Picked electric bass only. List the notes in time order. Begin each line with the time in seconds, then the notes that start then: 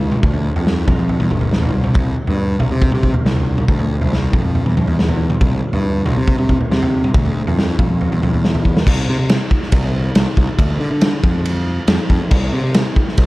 Already playing: C#2
0.23 D2
0.56 F2
0.88 F2
0.99 F2
1.21 E2
1.32 G1
1.53 A1
1.74 C2
1.95 C2
2.29 G2
2.61 C2
2.72 C3
2.94 C3
3.25 C2
3.68 D2
4.02 C2
4.33 F2
4.44 F2
4.66 E2
4.77 F2
4.87 E2
5.41 C2
5.74 G2
6.06 C2
6.17 C3
6.38 C3
6.72 C3
7.15 D2
7.47 F2
7.79 F2
7.90 F2
8.12 E2
8.22 F2
8.33 E2
8.87 C2
9.09 C3
9.19 C3
9.72 C2
10.16 C2
10.37 C2
10.58 D2
10.80 D3
10.91 D3
11.24 F2
11.88 F2
12.10 F2
12.31 C2
12.53 C3
12.64 C3
13.18 C2